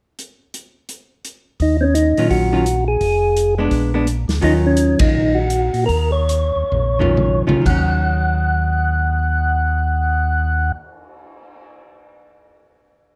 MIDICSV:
0, 0, Header, 1, 6, 480
1, 0, Start_track
1, 0, Key_signature, -6, "minor"
1, 0, Tempo, 353357
1, 251, Time_signature, 4, 2, 24, 8
1, 6491, Tempo, 366077
1, 7451, Tempo, 392927
1, 8411, Tempo, 437637
1, 9371, Tempo, 485044
1, 9851, Tempo, 506329
1, 15066, End_track
2, 0, Start_track
2, 0, Title_t, "Tonewheel organ"
2, 0, Program_c, 0, 16
2, 2201, Note_on_c, 0, 63, 74
2, 2401, Note_off_c, 0, 63, 0
2, 2454, Note_on_c, 0, 60, 53
2, 2475, Note_on_c, 0, 61, 74
2, 2504, Note_off_c, 0, 60, 0
2, 2639, Note_off_c, 0, 61, 0
2, 2643, Note_on_c, 0, 63, 74
2, 3094, Note_off_c, 0, 63, 0
2, 3131, Note_on_c, 0, 66, 82
2, 3862, Note_off_c, 0, 66, 0
2, 3911, Note_on_c, 0, 68, 102
2, 4819, Note_off_c, 0, 68, 0
2, 6030, Note_on_c, 0, 63, 80
2, 6163, Note_off_c, 0, 63, 0
2, 6335, Note_on_c, 0, 61, 81
2, 6769, Note_off_c, 0, 61, 0
2, 6796, Note_on_c, 0, 63, 71
2, 7235, Note_on_c, 0, 66, 83
2, 7289, Note_off_c, 0, 63, 0
2, 7857, Note_off_c, 0, 66, 0
2, 7876, Note_on_c, 0, 70, 100
2, 8184, Note_off_c, 0, 70, 0
2, 8197, Note_on_c, 0, 73, 91
2, 9619, Note_off_c, 0, 73, 0
2, 9857, Note_on_c, 0, 78, 72
2, 12756, Note_off_c, 0, 78, 0
2, 15066, End_track
3, 0, Start_track
3, 0, Title_t, "Hollow-body jazz guitar"
3, 0, Program_c, 1, 26
3, 2958, Note_on_c, 1, 51, 49
3, 2967, Note_on_c, 1, 54, 55
3, 2971, Note_on_c, 1, 61, 51
3, 2978, Note_on_c, 1, 65, 55
3, 3407, Note_off_c, 1, 51, 0
3, 3411, Note_off_c, 1, 54, 0
3, 3414, Note_off_c, 1, 61, 0
3, 3417, Note_off_c, 1, 65, 0
3, 3428, Note_on_c, 1, 51, 48
3, 3434, Note_on_c, 1, 54, 54
3, 3436, Note_on_c, 1, 61, 60
3, 3446, Note_on_c, 1, 65, 54
3, 3590, Note_off_c, 1, 51, 0
3, 3593, Note_off_c, 1, 54, 0
3, 3594, Note_off_c, 1, 61, 0
3, 3599, Note_off_c, 1, 65, 0
3, 4867, Note_on_c, 1, 56, 65
3, 4874, Note_on_c, 1, 59, 66
3, 4890, Note_on_c, 1, 62, 71
3, 5320, Note_off_c, 1, 56, 0
3, 5324, Note_off_c, 1, 59, 0
3, 5332, Note_off_c, 1, 62, 0
3, 5354, Note_on_c, 1, 59, 64
3, 5355, Note_on_c, 1, 56, 49
3, 5366, Note_on_c, 1, 62, 63
3, 5512, Note_off_c, 1, 59, 0
3, 5513, Note_off_c, 1, 56, 0
3, 5518, Note_off_c, 1, 62, 0
3, 5996, Note_on_c, 1, 51, 65
3, 6008, Note_on_c, 1, 54, 65
3, 6011, Note_on_c, 1, 65, 65
3, 6015, Note_on_c, 1, 61, 69
3, 7337, Note_off_c, 1, 51, 0
3, 7343, Note_off_c, 1, 54, 0
3, 7344, Note_off_c, 1, 65, 0
3, 7346, Note_off_c, 1, 61, 0
3, 9174, Note_on_c, 1, 51, 56
3, 9182, Note_on_c, 1, 54, 63
3, 9186, Note_on_c, 1, 61, 64
3, 9193, Note_on_c, 1, 65, 59
3, 9636, Note_off_c, 1, 51, 0
3, 9639, Note_off_c, 1, 54, 0
3, 9641, Note_off_c, 1, 61, 0
3, 9644, Note_off_c, 1, 65, 0
3, 9664, Note_on_c, 1, 51, 54
3, 9667, Note_on_c, 1, 54, 45
3, 9669, Note_on_c, 1, 61, 57
3, 9670, Note_on_c, 1, 65, 63
3, 9797, Note_off_c, 1, 51, 0
3, 9809, Note_on_c, 1, 51, 58
3, 9831, Note_off_c, 1, 54, 0
3, 9832, Note_off_c, 1, 61, 0
3, 9832, Note_off_c, 1, 65, 0
3, 9851, Note_on_c, 1, 54, 60
3, 9891, Note_on_c, 1, 61, 63
3, 12747, Note_off_c, 1, 51, 0
3, 12788, Note_off_c, 1, 54, 0
3, 12828, Note_off_c, 1, 61, 0
3, 15066, End_track
4, 0, Start_track
4, 0, Title_t, "Tonewheel organ"
4, 0, Program_c, 2, 16
4, 2171, Note_on_c, 2, 39, 88
4, 2902, Note_off_c, 2, 39, 0
4, 2959, Note_on_c, 2, 46, 63
4, 3121, Note_off_c, 2, 46, 0
4, 3123, Note_on_c, 2, 34, 84
4, 4039, Note_off_c, 2, 34, 0
4, 4087, Note_on_c, 2, 29, 75
4, 5000, Note_off_c, 2, 29, 0
4, 5040, Note_on_c, 2, 34, 81
4, 5775, Note_off_c, 2, 34, 0
4, 5814, Note_on_c, 2, 38, 64
4, 5986, Note_off_c, 2, 38, 0
4, 6001, Note_on_c, 2, 39, 90
4, 6735, Note_off_c, 2, 39, 0
4, 6782, Note_on_c, 2, 39, 38
4, 6871, Note_off_c, 2, 39, 0
4, 6938, Note_on_c, 2, 34, 79
4, 7686, Note_off_c, 2, 34, 0
4, 7726, Note_on_c, 2, 46, 63
4, 7897, Note_off_c, 2, 46, 0
4, 7907, Note_on_c, 2, 39, 88
4, 8654, Note_off_c, 2, 39, 0
4, 8697, Note_on_c, 2, 39, 37
4, 8785, Note_off_c, 2, 39, 0
4, 8872, Note_on_c, 2, 34, 84
4, 9630, Note_off_c, 2, 34, 0
4, 9671, Note_on_c, 2, 34, 35
4, 9761, Note_off_c, 2, 34, 0
4, 9848, Note_on_c, 2, 39, 77
4, 12748, Note_off_c, 2, 39, 0
4, 15066, End_track
5, 0, Start_track
5, 0, Title_t, "Cymbal swell"
5, 10160, Note_on_c, 9, 59, 38
5, 13586, Note_off_c, 9, 59, 0
5, 15066, End_track
6, 0, Start_track
6, 0, Title_t, "Drums"
6, 255, Note_on_c, 9, 42, 49
6, 390, Note_off_c, 9, 42, 0
6, 734, Note_on_c, 9, 42, 50
6, 870, Note_off_c, 9, 42, 0
6, 1206, Note_on_c, 9, 42, 49
6, 1342, Note_off_c, 9, 42, 0
6, 1693, Note_on_c, 9, 42, 45
6, 1828, Note_off_c, 9, 42, 0
6, 2173, Note_on_c, 9, 36, 27
6, 2173, Note_on_c, 9, 46, 36
6, 2308, Note_off_c, 9, 36, 0
6, 2308, Note_off_c, 9, 46, 0
6, 2650, Note_on_c, 9, 42, 54
6, 2786, Note_off_c, 9, 42, 0
6, 2953, Note_on_c, 9, 46, 38
6, 3089, Note_off_c, 9, 46, 0
6, 3132, Note_on_c, 9, 36, 28
6, 3133, Note_on_c, 9, 46, 37
6, 3268, Note_off_c, 9, 36, 0
6, 3269, Note_off_c, 9, 46, 0
6, 3614, Note_on_c, 9, 42, 46
6, 3750, Note_off_c, 9, 42, 0
6, 4086, Note_on_c, 9, 46, 40
6, 4088, Note_on_c, 9, 36, 30
6, 4222, Note_off_c, 9, 46, 0
6, 4224, Note_off_c, 9, 36, 0
6, 4571, Note_on_c, 9, 42, 53
6, 4707, Note_off_c, 9, 42, 0
6, 5041, Note_on_c, 9, 46, 41
6, 5043, Note_on_c, 9, 36, 31
6, 5177, Note_off_c, 9, 46, 0
6, 5179, Note_off_c, 9, 36, 0
6, 5530, Note_on_c, 9, 42, 44
6, 5665, Note_off_c, 9, 42, 0
6, 5827, Note_on_c, 9, 46, 35
6, 5828, Note_on_c, 9, 38, 45
6, 5963, Note_off_c, 9, 46, 0
6, 5964, Note_off_c, 9, 38, 0
6, 6002, Note_on_c, 9, 36, 30
6, 6007, Note_on_c, 9, 46, 36
6, 6138, Note_off_c, 9, 36, 0
6, 6143, Note_off_c, 9, 46, 0
6, 6475, Note_on_c, 9, 42, 54
6, 6607, Note_off_c, 9, 42, 0
6, 6772, Note_on_c, 9, 51, 69
6, 6780, Note_on_c, 9, 36, 84
6, 6903, Note_off_c, 9, 51, 0
6, 6911, Note_off_c, 9, 36, 0
6, 7438, Note_on_c, 9, 42, 49
6, 7561, Note_off_c, 9, 42, 0
6, 7731, Note_on_c, 9, 46, 33
6, 7853, Note_off_c, 9, 46, 0
6, 7911, Note_on_c, 9, 36, 27
6, 7914, Note_on_c, 9, 46, 38
6, 8033, Note_off_c, 9, 36, 0
6, 8036, Note_off_c, 9, 46, 0
6, 8404, Note_on_c, 9, 42, 53
6, 8514, Note_off_c, 9, 42, 0
6, 8873, Note_on_c, 9, 43, 42
6, 8983, Note_off_c, 9, 43, 0
6, 9199, Note_on_c, 9, 43, 62
6, 9309, Note_off_c, 9, 43, 0
6, 9371, Note_on_c, 9, 47, 56
6, 9470, Note_off_c, 9, 47, 0
6, 9684, Note_on_c, 9, 47, 76
6, 9783, Note_off_c, 9, 47, 0
6, 9852, Note_on_c, 9, 36, 49
6, 9853, Note_on_c, 9, 49, 48
6, 9946, Note_off_c, 9, 36, 0
6, 9948, Note_off_c, 9, 49, 0
6, 15066, End_track
0, 0, End_of_file